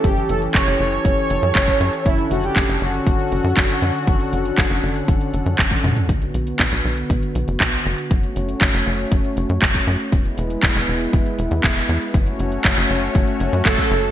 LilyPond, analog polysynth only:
\new Staff \with { instrumentName = "Analog polysynth" } { \time 4/4 \key d \major \tempo 4 = 119 g'8 a'8 cis''8 cis''2~ cis''8 | e'8 fis'16 g'8. fis'2~ fis'8~ | fis'2. r4 | \key fis \minor r1 |
r1 | r1 | r2. a'4 | }